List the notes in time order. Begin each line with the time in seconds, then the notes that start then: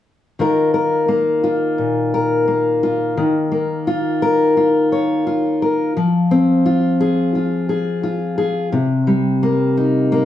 0.39 D#3 A#3 F4 A#4
0.74 A#4
1.08 A#3
1.44 F4
1.78 A#2
2.14 A#4
2.48 A#3
2.83 F4
3.17 D#3
3.52 A#3
3.87 F4
4.22 A#4
4.57 F4
4.92 C#5
5.27 F4
5.62 A#4
5.97 F3
6.31 C4
6.66 F4
7.01 G#4
7.35 F4
7.69 G#4
8.03 F4
8.38 G#4
8.72 C3
9.07 G3
9.43 A#3
9.77 D#4
10.12 A#3